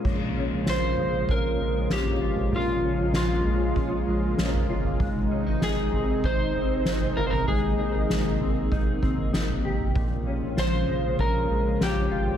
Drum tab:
CC |x---------------|----------------|----------------|----------------|
SD |----o-------o---|----o-------o---|----o-------o---|----o-------o---|
FT |o-----o-o----o-o|o-----o-o----o-o|o-----o-o----o-o|o-----o-o--o-o-o|
BD |o-------o-------|--------o-------|o-------o-------|--------o-o-----|

CC |----------------|
SD |----o-------o---|
FT |o-----o-o----o-o|
BD |o-------o-------|